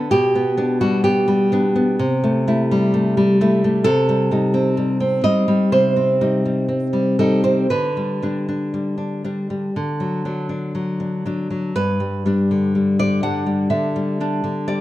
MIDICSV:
0, 0, Header, 1, 2, 480
1, 0, Start_track
1, 0, Key_signature, 1, "major"
1, 0, Tempo, 940439
1, 57, Time_signature, 4, 2, 24, 8
1, 1498, Tempo, 913242
1, 2458, Tempo, 960000
1, 3418, Tempo, 1011804
1, 5818, Tempo, 975610
1, 7327, End_track
2, 0, Start_track
2, 0, Title_t, "Nylon-string guitar"
2, 0, Program_c, 0, 24
2, 0, Note_on_c, 0, 50, 47
2, 0, Note_on_c, 0, 59, 55
2, 0, Note_on_c, 0, 69, 93
2, 54, Note_off_c, 0, 69, 0
2, 56, Note_on_c, 0, 67, 96
2, 61, Note_on_c, 0, 47, 75
2, 62, Note_off_c, 0, 59, 0
2, 64, Note_off_c, 0, 50, 0
2, 180, Note_on_c, 0, 59, 55
2, 287, Note_off_c, 0, 59, 0
2, 293, Note_on_c, 0, 59, 53
2, 296, Note_on_c, 0, 62, 52
2, 396, Note_off_c, 0, 67, 0
2, 413, Note_on_c, 0, 55, 50
2, 413, Note_on_c, 0, 66, 75
2, 527, Note_off_c, 0, 59, 0
2, 528, Note_off_c, 0, 66, 0
2, 530, Note_on_c, 0, 67, 87
2, 534, Note_on_c, 0, 59, 56
2, 646, Note_off_c, 0, 55, 0
2, 652, Note_on_c, 0, 55, 64
2, 769, Note_off_c, 0, 59, 0
2, 773, Note_off_c, 0, 62, 0
2, 776, Note_on_c, 0, 59, 55
2, 779, Note_on_c, 0, 62, 62
2, 890, Note_off_c, 0, 59, 0
2, 896, Note_on_c, 0, 59, 57
2, 996, Note_off_c, 0, 47, 0
2, 999, Note_off_c, 0, 62, 0
2, 1016, Note_off_c, 0, 55, 0
2, 1017, Note_off_c, 0, 59, 0
2, 1018, Note_on_c, 0, 48, 69
2, 1141, Note_on_c, 0, 57, 58
2, 1259, Note_off_c, 0, 57, 0
2, 1264, Note_on_c, 0, 57, 57
2, 1266, Note_on_c, 0, 64, 64
2, 1385, Note_on_c, 0, 55, 62
2, 1493, Note_off_c, 0, 57, 0
2, 1499, Note_on_c, 0, 57, 58
2, 1616, Note_off_c, 0, 55, 0
2, 1622, Note_on_c, 0, 55, 58
2, 1720, Note_off_c, 0, 67, 0
2, 1741, Note_off_c, 0, 57, 0
2, 1743, Note_off_c, 0, 64, 0
2, 1747, Note_on_c, 0, 57, 55
2, 1750, Note_on_c, 0, 64, 63
2, 1864, Note_off_c, 0, 57, 0
2, 1870, Note_on_c, 0, 57, 52
2, 1960, Note_off_c, 0, 48, 0
2, 1963, Note_off_c, 0, 64, 0
2, 1976, Note_on_c, 0, 69, 102
2, 1979, Note_on_c, 0, 48, 78
2, 1981, Note_off_c, 0, 55, 0
2, 1984, Note_off_c, 0, 57, 0
2, 2104, Note_on_c, 0, 55, 57
2, 2217, Note_off_c, 0, 55, 0
2, 2223, Note_on_c, 0, 55, 50
2, 2227, Note_on_c, 0, 63, 54
2, 2341, Note_on_c, 0, 60, 53
2, 2457, Note_off_c, 0, 55, 0
2, 2463, Note_on_c, 0, 55, 53
2, 2573, Note_off_c, 0, 60, 0
2, 2579, Note_on_c, 0, 60, 52
2, 2674, Note_off_c, 0, 69, 0
2, 2691, Note_off_c, 0, 55, 0
2, 2692, Note_off_c, 0, 63, 0
2, 2694, Note_off_c, 0, 48, 0
2, 2696, Note_on_c, 0, 55, 50
2, 2696, Note_on_c, 0, 75, 89
2, 2698, Note_on_c, 0, 63, 52
2, 2811, Note_off_c, 0, 55, 0
2, 2817, Note_on_c, 0, 55, 55
2, 2926, Note_off_c, 0, 75, 0
2, 2939, Note_on_c, 0, 72, 86
2, 2941, Note_on_c, 0, 48, 55
2, 3054, Note_off_c, 0, 60, 0
2, 3060, Note_on_c, 0, 60, 44
2, 3177, Note_off_c, 0, 55, 0
2, 3177, Note_off_c, 0, 63, 0
2, 3183, Note_on_c, 0, 55, 51
2, 3184, Note_on_c, 0, 63, 51
2, 3299, Note_off_c, 0, 55, 0
2, 3305, Note_on_c, 0, 55, 48
2, 3414, Note_off_c, 0, 60, 0
2, 3418, Note_off_c, 0, 55, 0
2, 3420, Note_on_c, 0, 60, 50
2, 3536, Note_on_c, 0, 55, 45
2, 3640, Note_off_c, 0, 72, 0
2, 3654, Note_off_c, 0, 55, 0
2, 3657, Note_off_c, 0, 63, 0
2, 3659, Note_on_c, 0, 55, 45
2, 3660, Note_on_c, 0, 69, 70
2, 3662, Note_on_c, 0, 63, 52
2, 3774, Note_off_c, 0, 60, 0
2, 3775, Note_off_c, 0, 69, 0
2, 3777, Note_on_c, 0, 72, 72
2, 3780, Note_on_c, 0, 60, 43
2, 3882, Note_off_c, 0, 55, 0
2, 3884, Note_off_c, 0, 48, 0
2, 3884, Note_off_c, 0, 63, 0
2, 3899, Note_off_c, 0, 72, 0
2, 3901, Note_off_c, 0, 60, 0
2, 3902, Note_on_c, 0, 71, 72
2, 3906, Note_on_c, 0, 50, 63
2, 4028, Note_on_c, 0, 55, 44
2, 4145, Note_off_c, 0, 55, 0
2, 4150, Note_on_c, 0, 55, 38
2, 4154, Note_on_c, 0, 62, 44
2, 4268, Note_off_c, 0, 62, 0
2, 4274, Note_on_c, 0, 62, 41
2, 4388, Note_off_c, 0, 55, 0
2, 4393, Note_on_c, 0, 55, 42
2, 4501, Note_off_c, 0, 62, 0
2, 4507, Note_on_c, 0, 62, 42
2, 4628, Note_off_c, 0, 55, 0
2, 4631, Note_off_c, 0, 62, 0
2, 4634, Note_on_c, 0, 55, 41
2, 4637, Note_on_c, 0, 62, 42
2, 4750, Note_off_c, 0, 55, 0
2, 4756, Note_on_c, 0, 55, 43
2, 4846, Note_off_c, 0, 50, 0
2, 4850, Note_off_c, 0, 62, 0
2, 4869, Note_off_c, 0, 55, 0
2, 4879, Note_on_c, 0, 50, 57
2, 4993, Note_on_c, 0, 54, 39
2, 5106, Note_off_c, 0, 54, 0
2, 5112, Note_on_c, 0, 54, 39
2, 5114, Note_on_c, 0, 62, 41
2, 5220, Note_off_c, 0, 62, 0
2, 5226, Note_on_c, 0, 62, 43
2, 5318, Note_off_c, 0, 71, 0
2, 5341, Note_off_c, 0, 54, 0
2, 5347, Note_on_c, 0, 54, 43
2, 5460, Note_off_c, 0, 62, 0
2, 5466, Note_on_c, 0, 62, 37
2, 5582, Note_off_c, 0, 54, 0
2, 5587, Note_off_c, 0, 62, 0
2, 5588, Note_on_c, 0, 54, 38
2, 5592, Note_on_c, 0, 62, 45
2, 5700, Note_off_c, 0, 54, 0
2, 5706, Note_on_c, 0, 54, 40
2, 5807, Note_off_c, 0, 50, 0
2, 5807, Note_off_c, 0, 62, 0
2, 5822, Note_off_c, 0, 54, 0
2, 5826, Note_on_c, 0, 71, 82
2, 5830, Note_on_c, 0, 43, 62
2, 5946, Note_on_c, 0, 55, 41
2, 6066, Note_off_c, 0, 55, 0
2, 6072, Note_on_c, 0, 55, 43
2, 6078, Note_on_c, 0, 62, 46
2, 6196, Note_on_c, 0, 50, 39
2, 6309, Note_off_c, 0, 55, 0
2, 6315, Note_on_c, 0, 55, 42
2, 6409, Note_off_c, 0, 71, 0
2, 6429, Note_off_c, 0, 50, 0
2, 6434, Note_on_c, 0, 50, 48
2, 6435, Note_on_c, 0, 74, 79
2, 6544, Note_off_c, 0, 55, 0
2, 6544, Note_off_c, 0, 62, 0
2, 6548, Note_off_c, 0, 74, 0
2, 6550, Note_on_c, 0, 55, 46
2, 6550, Note_on_c, 0, 62, 47
2, 6551, Note_on_c, 0, 78, 74
2, 6660, Note_off_c, 0, 55, 0
2, 6666, Note_on_c, 0, 55, 44
2, 6768, Note_off_c, 0, 43, 0
2, 6775, Note_off_c, 0, 78, 0
2, 6776, Note_off_c, 0, 50, 0
2, 6782, Note_on_c, 0, 50, 45
2, 6782, Note_on_c, 0, 76, 66
2, 6903, Note_off_c, 0, 55, 0
2, 6909, Note_on_c, 0, 55, 49
2, 7024, Note_off_c, 0, 55, 0
2, 7027, Note_off_c, 0, 62, 0
2, 7030, Note_on_c, 0, 55, 45
2, 7033, Note_on_c, 0, 62, 50
2, 7139, Note_off_c, 0, 50, 0
2, 7145, Note_on_c, 0, 50, 45
2, 7239, Note_off_c, 0, 76, 0
2, 7259, Note_off_c, 0, 55, 0
2, 7263, Note_on_c, 0, 74, 72
2, 7265, Note_on_c, 0, 55, 46
2, 7327, Note_off_c, 0, 50, 0
2, 7327, Note_off_c, 0, 55, 0
2, 7327, Note_off_c, 0, 62, 0
2, 7327, Note_off_c, 0, 74, 0
2, 7327, End_track
0, 0, End_of_file